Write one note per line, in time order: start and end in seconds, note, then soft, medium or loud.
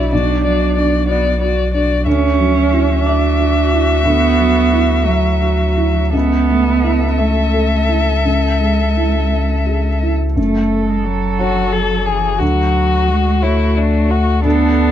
0.00 0.13 B1 soft
0.00 2.07 B1 medium
0.00 0.14 F#3 soft
0.00 0.32 D4 soft
0.00 0.14 E4 medium
0.00 0.11 F#4 soft
0.00 0.14 F#4 soft
0.00 0.11 D5 soft
0.00 0.15 D5 soft
0.11 2.02 B1 soft
0.11 1.08 D4 medium
0.11 0.43 F#4 soft
0.11 0.43 D5 soft
0.43 0.96 F#3 soft
0.43 0.75 F#4 soft
0.43 0.75 D5 soft
0.75 1.28 D4 soft
0.75 1.07 F#4 soft
0.75 1.07 D5 soft
1.07 1.40 B3 medium
1.07 1.39 F#4 soft
1.07 1.40 D5 medium
1.07 1.61 D5 soft
1.41 1.73 F#4 soft
1.41 1.93 F#4 soft
1.41 1.73 D5 soft
1.74 2.06 D4 soft
1.74 2.06 F#4 soft
1.74 2.06 D5 soft
2.06 4.02 D2 medium
2.06 6.16 D2 medium
2.06 3.07 C#4 loud
2.06 6.10 F#4 medium
2.06 6.10 E5 medium
2.39 2.93 F#3 soft
2.72 3.26 E4 soft
3.06 4.04 D4 medium
3.06 3.60 E5 soft
3.40 3.93 F#4 soft
3.73 4.26 E4 soft
4.05 6.09 D2 medium
4.05 5.06 B3 loud
4.39 4.93 F#3 soft
4.73 5.27 E4 soft
5.05 6.13 F#3 medium
5.05 5.63 E5 soft
5.41 5.99 F#4 soft
5.77 6.13 E4 soft
6.13 8.20 C#2 medium
6.13 10.36 C#2 medium
6.13 7.20 B3 medium
6.13 10.13 A4 medium
6.13 10.13 E5 medium
6.49 7.05 A3 soft
6.84 7.39 E4 soft
7.18 8.23 A3 medium
7.18 7.75 E5 soft
7.54 8.10 A4 soft
7.88 8.46 E4 soft
8.24 10.34 C#2 soft
8.24 9.98 G#3 medium
8.61 9.18 G#3 soft
8.97 9.53 E4 soft
9.32 9.88 E5 soft
9.66 10.23 G#4 soft
10.03 10.37 E4 soft
10.36 12.42 F#1 medium
10.36 12.37 F#2 soft
10.36 10.90 A3 medium
10.36 12.37 A4 soft
10.89 11.06 G#3 medium
11.04 12.08 F#3 medium
11.39 12.37 F#4 soft
11.39 11.74 F#4 medium
11.39 12.37 C#5 soft
11.72 12.07 A4 medium
12.05 12.42 E3 medium
12.05 12.40 G#4 medium
12.39 14.40 D2 medium
12.39 14.91 D2 medium
12.39 13.10 F#3 medium
12.39 13.44 F#4 medium
12.39 14.40 F#4 medium
13.08 13.44 G#3 medium
13.42 14.42 A3 medium
13.42 13.79 E4 medium
13.42 14.40 F#4 soft
13.42 14.40 C#5 soft
13.77 14.12 D4 medium
14.10 14.44 F#4 medium
14.43 14.91 D2 medium
14.43 14.91 B3 medium
14.43 14.91 D4 medium
14.43 14.91 A4 medium